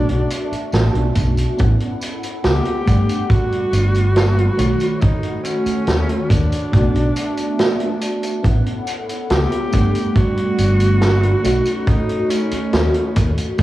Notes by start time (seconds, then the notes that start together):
Already playing: A3 B3 D4 F#4 D5 E5 A5
0.09 B1, closed hi-hat
0.30 closed hi-hat, tambourine
0.52 muted fingered electric bass stroke, closed hi-hat, tambourine
0.72 A1, snare, closed hi-hat, tambourine
0.94 B1, closed hi-hat
1.15 B1, kick, closed hi-hat, tambourine
1.37 closed hi-hat, tambourine
1.57 A1 B3 C#4 E4 A4 C#5 F#5 B5, kick, closed hi-hat, tambourine
1.80 closed hi-hat
2.01 closed hi-hat, tambourine
2.23 closed hi-hat, tambourine
2.44 C#2 G4, snare, closed hi-hat, tambourine
2.65 closed hi-hat
2.85 G1 G3 A3 B3 D4 D5 F#5, kick, closed hi-hat, tambourine
3.09 closed hi-hat, tambourine
3.30 F#4, kick, closed hi-hat, tambourine
3.52 closed hi-hat
3.73 G1, closed hi-hat, tambourine
3.95 closed hi-hat, tambourine
4.16 snare, closed hi-hat, tambourine
4.39 closed hi-hat
4.57 B1 D#3 A3 F#4 A4 C#5 F#5, closed hi-hat, tambourine
4.80 closed hi-hat, tambourine
5.01 D#4, kick, closed hi-hat, tambourine
5.23 closed hi-hat
5.43 C#4, closed hi-hat, tambourine
5.66 muted fingered electric bass stroke, closed hi-hat, tambourine
5.87 D#2, snare, closed hi-hat, tambourine
6.09 closed hi-hat
6.30 D#2 D4, kick, closed hi-hat, tambourine
6.52 closed hi-hat, tambourine
6.72 B1 A3 B3 D4 F#4 D5 E5 A5, kick, closed hi-hat, tambourine
6.95 B1, closed hi-hat
7.16 closed hi-hat, tambourine
7.37 closed hi-hat, tambourine
7.59 snare, closed hi-hat, tambourine
7.64 D#4
7.74 D4
7.80 B3, closed hi-hat
7.92 D4
8.01 closed hi-hat, tambourine
8.23 closed hi-hat, tambourine
8.43 A1 B3 C#4 E4 A4 C#5 F#5 B5, kick, closed hi-hat, tambourine
8.66 closed hi-hat
8.87 closed hi-hat, tambourine
9.09 closed hi-hat, tambourine
9.30 C#2 G4, snare, closed hi-hat, tambourine
9.52 closed hi-hat
9.71 G1 G3 A3 B3 D4 D5 F#5 B5, kick, closed hi-hat, tambourine
9.95 closed hi-hat, tambourine
10.16 F#4, kick, closed hi-hat, tambourine
10.37 closed hi-hat
10.58 G1, closed hi-hat, tambourine
10.80 closed hi-hat, tambourine
11.01 snare, closed hi-hat, tambourine
11.23 closed hi-hat
11.43 B1 A3 C#4 D#4 F#4 A4 C#5 D#5, closed hi-hat, tambourine
11.66 closed hi-hat, tambourine
11.87 D#4, kick, closed hi-hat, tambourine
12.09 closed hi-hat
12.30 C#4, closed hi-hat, tambourine
12.51 muted fingered electric bass stroke, closed hi-hat, tambourine
12.73 D#2, snare, closed hi-hat, tambourine
12.94 closed hi-hat
13.16 D#2, kick, closed hi-hat, tambourine
13.38 closed hi-hat, tambourine
13.58 B1 A3 B3 D4 F#4 D5 E5, kick, closed hi-hat, tambourine